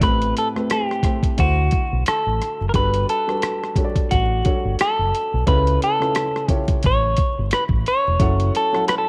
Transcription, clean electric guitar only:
0.03 B4
0.38 A4
0.72 G4
1.40 F#4
2.08 A4
2.69 A#4
2.76 B4
3.10 A4
4.11 F#4
4.81 A4
5.48 B4
5.84 A4
6.52 G4
6.86 C#5
7.54 B4
7.88 C#5
8.57 A4
8.88 B4
8.98 A4

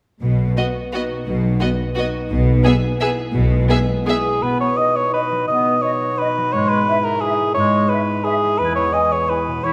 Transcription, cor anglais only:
4.06 G#4
4.43 B4
4.60 C#5
4.77 D#5
4.96 C#5
5.14 B4
5.48 D#5
5.82 C#5
6.18 B4
6.52 C#5
6.69 B4
7.05 A#4
7.21 G#4
7.54 C#5
7.89 B4
8.24 G#4
8.59 B4
8.75 C#5
8.93 D#5
9.12 C#5
9.29 B4
9.64 C#5

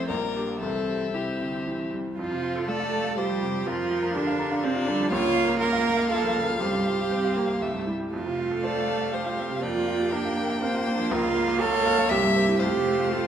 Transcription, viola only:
Already playing: C4
0.09 A#3
0.61 C4
1.14 C4
2.18 F3
2.68 A3
3.18 G3
3.68 F3
4.16 D3
4.64 C3
4.88 D3
5.12 A#3
6.61 G3
7.11 C4
7.36 A#3
7.61 A3
7.87 G3
8.13 A3
9.63 A#3
12.61 A3

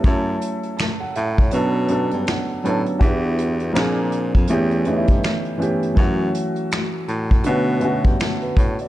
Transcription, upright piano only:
0.03 F#3 A3 C#4 E4
0.08 A4
0.77 A5
1.00 F#5
1.16 E5
1.39 C#5
1.52 F#3 B3 C#4 D4
1.56 A4
1.88 F#3 B3 C#4 D4
1.92 A4
2.28 F#5
2.64 F#3 B3 C#4 D4 A5
2.68 A4
2.99 B3 D4 E4 F#4
3.03 G4
3.72 F3 A#3 C4 D4
3.77 G#4
4.48 E3 A3 B3 C#4
4.52 G4
4.85 E3 A3 B3 C#4
4.90 D#4
4.96 E4
5.58 E3 A3 B3 C#4
5.62 G4
5.95 E3 F#3 A3 C#4
5.99 F#4
7.44 D3 A3 B3 C#4
7.48 F#4
7.80 D3 A3 B3 C#4
7.84 F#4
8.22 A4
8.42 B4
8.57 C#5
8.81 D5

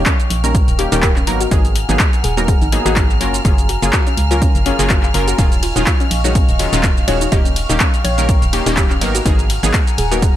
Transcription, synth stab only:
0.44 D#3 G3 A#3 C#4 A#4
0.79 D#3 G3 A#3 C#4 G4
0.92 D#3 G3 A#3 C#4 G4
1.27 F#3 A#3 B3 D#4 A#4
1.51 F#3 A#3 B3 D#4 G#4
1.89 F#3 A#3 B3 D#4 G#4
2.37 F#3 A#3 B3 D#4 A#4
2.72 F#3 A#3 B3 D#4 G#4
2.86 F#3 A#3 B3 D#4 G#4
3.21 F#3 A#3 C#4 F4 A#4
3.45 F#3 A#3 C#4 F4 G#4
3.82 F#3 A#3 C#4 F4 G#4
4.31 F#3 A#3 C#4 F4 A#4
4.66 F#3 A#3 C#4 F4 G#4
4.79 F#3 A#3 C#4 F4 G#4
5.14 F#3 A#3 C#4 F4 A#4
5.38 D#3 F#3 G#3 C#4 F4
5.76 D#3 F#3 G#3 C#4 F4
6.24 D#3 F#3 G#3 C#4 F#4
6.59 D#3 F#3 G#3 C#4 F4
6.73 D#3 F#3 G#3 C#4 F4
7.08 D#3 F#3 G#3 C#4 F#4
7.32 D#3 G3 A#3 C#4 G4
7.69 D#3 G3 A#3 C#4 G4
8.18 D#3 G3 A#3 C#4 A#4
8.53 D#3 G3 A#3 C#4 G4
8.66 D#3 G3 A#3 C#4 G4
9.01 F#3 A#3 B3 D#4 A#4
9.25 F#3 A#3 B3 D#4 G#4
9.63 F#3 A#3 B3 D#4 G#4
10.11 F#3 A#3 B3 D#4 A#4

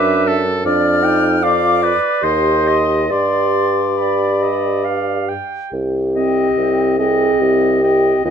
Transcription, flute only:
Already playing: D6
0.65 F6
1.43 D6
2.23 C6
3.09 C6
3.97 B5
6.15 G5
6.98 G5
7.82 G5
8.24 G5

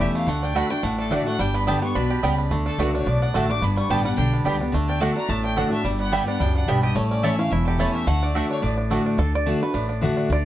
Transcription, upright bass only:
0.27 D2
0.83 A1
1.39 G1
1.95 B1
2.23 C#2
2.51 D2
2.78 C#2
3.06 B1
3.34 A1
3.61 G1
3.89 A1
4.18 B1
4.45 C#2
4.74 D2
5.29 A1
5.84 G1
6.40 C#2
6.68 B1
6.96 A1
7.51 E1
8.07 D2
8.63 A1
9.18 D2
9.74 A1
10.29 D2

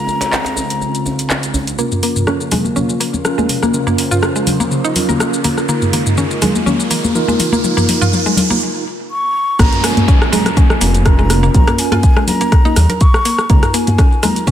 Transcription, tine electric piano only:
Already playing: C#3 D#4 F4 A#4
1.79 C#4 F4 A#4
3.25 C#4 F4 A#4
3.74 C#4 F4 A#4
4.96 C#4 F4 A#4
5.69 D#4 F4 A#4
7.15 D#4 F4 A#4
7.64 D#4 F4 A#4
9.59 C#4 F4 A#4
11.06 C#4 F4 A#4
11.54 C#4 F4 A#4
13.50 D#4 F4 A#4

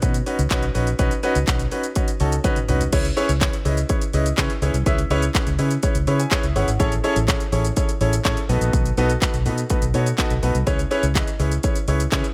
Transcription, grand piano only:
0.02 C#4 D#4 F#4 B4
0.26 C#4 D#4 F#4 B4
0.51 C#4 D#4 F#4 B4
0.74 C#4 D#4 F#4 B4
0.99 C#4 D#4 F#4 B4
1.23 C#4 D#4 F#4 B4
1.47 C#4 D#4 F#4 B4
1.72 C#4 D#4 F#4 B4
1.96 C#4 D#4 F#4 B4
2.20 C#4 D#4 F#4 A4
2.44 C#4 D#4 F#4 B4
2.69 C#4 D#4 F#4 B4
2.93 C#4 E4 G#4 B4 C#5
3.17 C#4 E4 G#4 B4 C#5
3.41 C#4 E4 G#4 B4 C#5
3.65 C#4 E4 G#4 B4 D#5
3.89 C#4 E4 G#4 B4 C#5
4.14 C#4 E4 G#4 B4 D#5
4.38 C#4 E4 G#4 B4 C#5
4.62 C#4 E4 G#4 B4 C#5
4.86 C#4 E4 G#4 B4 E5
5.11 C#4 E4 G#4 B4 C#5
5.35 C#4 E4 G#4 B4 C#5
5.58 C#4 E4 G#4 B4 C#5
5.83 C#4 E4 G#4 B4 C#5
6.07 C#4 E4 G#4 B4 C#5 B5
6.20 G#5
6.31 C#4 E4 G#4 B4 C#5 E5
6.56 C#4 E4 G#4 B4 C#5 F#5
6.80 C#4 E4 G#4 A4 C#5
7.04 C#4 E4 G#4 A4 C#5
7.28 C#4 E4 G#4 A4 C#5
7.52 C#4 E4 G#4 A4 C#5
7.76 C#4 E4 G#4 A4 C#5
8.01 C#4 E4 G#4 A4 C#5
8.25 C#4 E4 G#4 A4 C#5
8.49 B3 D#4 F#4 A4 B4
8.98 B3 D#4 F#4 A4 B4
9.22 B3 D#4 F#4 A4 B4
9.46 B3 D#4 F#4 A4 B4
9.70 B3 D#4 F#4 A4 B4
9.94 B3 D#4 F#4 A4 C#5
10.18 B3 D#4 F#4 A4 B4
10.43 B3 D#4 F#4 A4 B4
10.67 C#4 E4 G#4 B4 C#5
10.91 C#4 E4 G#4 B4 C#5
11.15 C#4 E4 G#4 B4 D#5
11.39 C#4 E4 G#4 B4 C#5
11.64 C#4 E4 G#4 B4 C#5
11.88 C#4 E4 G#4 B4 C#5
12.12 C#4 E4 G#4 B4 C#5

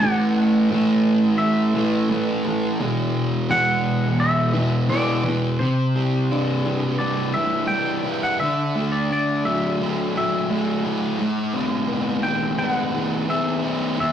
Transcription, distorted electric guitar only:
0.01 A2 E3 A3
0.70 A2 E3 A3
1.75 A2 E3 A3
2.10 A2 E3 A3
2.44 E3 A3
2.79 E2 B2 E3
3.50 E2 B2 E3
4.54 E2 B2 E3
4.89 E2 B2 E3
5.25 B2 E3
5.60 C3
5.95 G3
6.31 D4
6.65 E3
7.00 G3
7.36 E3
7.70 G3
8.04 E4
8.40 D3
8.75 A3
9.10 D4
9.45 F#3
9.81 A3
10.15 F#3
10.49 A3
10.84 E4
11.18 A2
11.54 C4
11.88 B3
12.24 E3
12.58 C4
12.94 E3
13.29 C4
13.64 E4
13.98 E2

